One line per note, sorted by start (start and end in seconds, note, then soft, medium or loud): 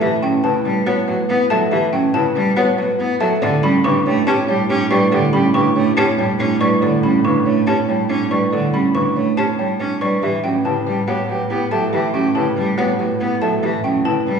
0.00 3.29 A2 medium
0.00 0.17 E3 loud
0.00 0.29 G4 medium
0.00 0.29 E5 loud
0.22 0.39 F#3 medium
0.22 0.50 C#4 medium
0.22 0.50 G5 medium
0.44 0.60 C#3 medium
0.44 0.72 E4 loud
0.44 0.72 B4 medium
0.44 0.72 A5 loud
0.65 0.81 G3 loud
0.65 0.93 B4 medium
0.86 1.02 B3 medium
0.86 1.14 F#4 medium
0.86 1.14 C#5 medium
0.86 1.14 F#5 loud
1.08 1.24 F#3 medium
1.08 1.35 B4 medium
1.08 1.36 F#5 medium
1.29 1.45 B3 loud
1.29 1.57 E4 medium
1.50 1.66 F#3 loud
1.50 1.78 A4 loud
1.50 1.70 E5 loud
1.50 1.78 A5 loud
1.72 1.88 E3 loud
1.72 1.99 G4 medium
1.72 1.99 E5 loud
1.93 2.09 F#3 medium
1.93 2.21 C#4 medium
1.93 2.21 G5 medium
2.14 2.30 C#3 medium
2.14 2.42 E4 loud
2.14 2.42 B4 medium
2.14 2.42 A5 loud
2.35 2.51 G3 loud
2.35 2.63 B4 medium
2.57 2.73 B3 medium
2.57 2.84 F#4 loud
2.57 2.84 C#5 medium
2.57 2.84 F#5 loud
2.78 2.94 F#3 medium
2.78 3.06 B4 medium
2.78 3.05 F#5 medium
2.99 3.15 B3 loud
2.99 3.27 E4 medium
3.20 3.36 F#3 loud
3.20 3.41 A4 loud
3.20 3.48 E5 loud
3.20 3.48 A5 loud
3.42 10.10 A2 medium
3.42 3.58 D3 loud
3.42 3.57 G4 medium
3.42 3.70 A4 medium
3.42 3.70 D5 loud
3.63 3.79 G3 loud
3.63 3.91 C#4 medium
3.63 3.78 G4 medium
3.63 3.91 B5 loud
3.84 4.00 C#3 medium
3.84 4.12 D4 loud
3.84 3.99 G4 medium
3.84 4.12 B4 medium
3.84 4.12 C#6 loud
4.06 4.22 A3 loud
4.06 4.21 G4 medium
4.06 4.33 C#5 medium
4.27 4.43 C#4 medium
4.27 4.55 G4 medium
4.27 4.42 G4 medium
4.27 4.55 C#5 medium
4.27 4.55 A5 loud
4.48 4.64 G3 medium
4.48 4.63 G4 medium
4.48 4.76 C#5 medium
4.48 4.76 G5 medium
4.69 4.86 C#4 loud
4.69 4.97 D4 medium
4.69 4.85 G4 loud
4.91 5.07 G3 loud
4.91 5.06 G4 loud
4.91 5.18 B4 loud
4.91 5.11 D5 loud
4.91 5.18 C#6 loud
5.12 5.28 D3 loud
5.12 5.27 G4 medium
5.12 5.40 A4 medium
5.12 5.40 D5 medium
5.33 5.49 G3 medium
5.33 5.61 C#4 medium
5.33 5.48 G4 loud
5.33 5.61 B5 medium
5.54 5.70 C#3 medium
5.54 5.82 D4 loud
5.54 5.70 G4 medium
5.54 5.82 B4 medium
5.54 5.82 C#6 loud
5.76 5.92 A3 loud
5.76 5.91 G4 medium
5.76 6.03 C#5 medium
5.97 6.13 C#4 medium
5.97 6.25 G4 loud
5.97 6.12 G4 medium
5.97 6.25 C#5 medium
5.97 6.25 A5 loud
6.18 6.34 G3 medium
6.18 6.34 G4 medium
6.18 6.46 C#5 medium
6.18 6.46 G5 medium
6.39 6.55 C#4 medium
6.39 6.67 D4 medium
6.39 6.55 G4 soft
6.61 6.77 G3 medium
6.61 6.89 B4 loud
6.61 6.81 D5 medium
6.61 6.89 C#6 loud
6.82 6.98 D3 medium
6.82 7.10 A4 medium
6.82 7.10 D5 medium
7.03 7.19 G3 medium
7.03 7.31 C#4 medium
7.03 7.31 B5 medium
7.24 7.40 C#3 medium
7.24 7.52 D4 loud
7.24 7.53 B4 medium
7.24 7.52 C#6 medium
7.45 7.62 A3 loud
7.45 7.74 C#5 medium
7.67 7.83 C#4 medium
7.67 7.95 G4 medium
7.67 7.95 C#5 medium
7.67 7.95 A5 loud
7.88 8.04 G3 medium
7.88 8.16 C#5 medium
7.88 8.16 G5 medium
8.09 8.25 C#4 medium
8.09 8.38 D4 medium
8.31 8.47 G3 medium
8.31 8.59 B4 medium
8.31 8.51 D5 medium
8.31 8.59 C#6 medium
8.52 8.68 D3 medium
8.52 8.80 A4 medium
8.52 8.80 D5 medium
8.74 8.90 G3 medium
8.74 9.01 C#4 medium
8.74 9.01 B5 medium
8.94 9.11 C#3 medium
8.94 9.23 D4 medium
8.94 9.23 B4 medium
8.94 9.23 C#6 medium
9.16 9.32 A3 medium
9.16 9.44 C#5 medium
9.37 9.53 C#4 medium
9.37 9.65 G4 medium
9.37 9.65 C#5 medium
9.37 9.65 A5 medium
9.58 9.75 G3 medium
9.58 9.87 C#5 medium
9.58 9.87 G5 medium
9.80 9.96 C#4 medium
9.80 10.08 D4 medium
10.01 10.17 G3 medium
10.01 10.29 B4 medium
10.01 10.29 D5 medium
10.01 10.29 C#6 medium
10.22 14.40 A2 medium
10.22 10.38 E3 medium
10.22 10.38 G4 soft
10.22 10.50 G4 medium
10.22 10.50 E5 medium
10.44 10.60 F#3 medium
10.44 10.72 C#4 medium
10.44 10.59 G4 soft
10.44 10.72 G5 medium
10.65 10.81 C#3 medium
10.65 10.93 E4 loud
10.65 10.80 G4 medium
10.65 10.93 B4 medium
10.65 10.93 A5 medium
10.86 11.02 G3 medium
10.86 11.01 G4 medium
10.86 11.14 B4 medium
11.07 11.24 B3 medium
11.07 11.35 F#4 medium
11.07 11.23 G4 medium
11.07 11.36 C#5 medium
11.07 11.35 F#5 medium
11.28 11.45 F#3 medium
11.28 11.43 G4 medium
11.28 11.57 B4 medium
11.28 11.57 F#5 medium
11.50 11.66 B3 medium
11.50 11.78 E4 medium
11.50 11.65 G4 medium
11.71 11.88 F#3 medium
11.71 11.86 G4 medium
11.71 11.99 A4 loud
11.71 11.92 E5 medium
11.71 11.99 A5 medium
11.93 12.09 E3 medium
11.93 12.21 G4 medium
11.93 12.08 G4 medium
11.93 12.21 E5 medium
12.14 12.30 F#3 medium
12.14 12.42 C#4 medium
12.14 12.29 G4 medium
12.14 12.42 G5 medium
12.35 12.51 C#3 medium
12.35 12.63 E4 medium
12.35 12.50 G4 medium
12.35 12.63 B4 medium
12.35 12.63 A5 medium
12.56 12.73 G3 loud
12.56 12.71 G4 medium
12.56 12.84 B4 medium
12.77 12.94 B3 medium
12.77 13.05 F#4 medium
12.77 12.93 G4 medium
12.77 13.05 C#5 medium
12.77 13.06 F#5 medium
12.99 13.15 F#3 medium
12.99 13.14 G4 medium
12.99 13.27 B4 medium
12.99 13.27 F#5 medium
13.20 13.36 B3 loud
13.20 13.48 E4 medium
13.20 13.36 G4 soft
13.42 13.58 F#3 medium
13.42 13.69 A4 loud
13.42 13.61 E5 medium
13.42 13.69 A5 loud
13.63 13.79 E3 medium
13.63 13.91 G4 medium
13.63 13.91 E5 medium
13.84 14.00 F#3 medium
13.84 14.12 C#4 medium
13.84 14.12 G5 loud
14.05 14.21 C#3 medium
14.05 14.33 E4 loud
14.05 14.33 B4 medium
14.05 14.33 A5 loud
14.26 14.40 G3 loud
14.26 14.40 B4 medium